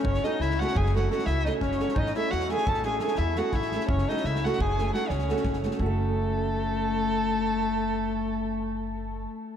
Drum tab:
SD |-oo-oooo-oo-ooo-o-oooo|-oo-oooo-oo-ooo-o-oooo|-ooooooo--o-o-oooooooo|----------------------|
BD |o-------o---------o---|o-------o---------o---|o-------o---------o---|o---------------------|

SD |----------------------|
BD |----------------------|